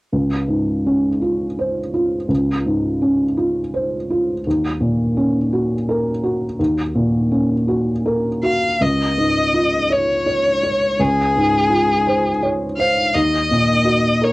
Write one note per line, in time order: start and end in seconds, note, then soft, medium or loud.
0.12 2.25 C#2 soft
0.48 1.07 G#2 soft
0.86 1.44 C#4 soft
1.22 1.79 F4 soft
1.59 2.16 C5 soft
1.94 2.51 F4 soft
2.28 4.41 C#2 soft
2.66 3.23 G#2 soft
3.02 3.59 C#4 soft
3.37 3.95 F4 soft
3.74 4.31 C5 soft
4.10 4.46 F4 soft
4.47 6.55 D#2 soft
4.81 5.38 A#2 soft
5.17 5.73 C#4 soft
5.53 6.09 F#4 soft
5.89 6.45 A#4 soft
6.23 6.81 F#4 soft
6.59 8.77 D#2 soft
6.95 7.53 A#2 soft
7.31 7.90 C#4 soft
7.68 8.28 F#4 soft
8.06 8.66 A#4 soft
8.43 8.80 F#4 soft
8.43 8.83 F5 soft
8.81 10.95 C#2 soft
8.81 9.94 D#5 soft
9.18 9.76 G#2 soft
9.54 10.12 F4 soft
9.90 10.25 C#5 soft
9.90 11.02 C#5 medium
10.26 10.62 C#5 soft
10.63 11.21 C#5 soft
10.99 13.10 C#2 soft
10.99 12.43 G#4 medium
11.36 11.93 G#2 soft
11.70 12.28 F4 soft
12.07 12.64 C5 soft
12.43 13.00 C#5 soft
12.78 13.15 C5 soft
12.78 13.16 F5 medium
13.14 14.33 D#2 soft
13.14 14.25 D#5 medium
13.51 14.08 A#2 soft
13.85 14.33 F#4 soft
14.22 14.33 A#4 soft
14.22 14.33 C#5 soft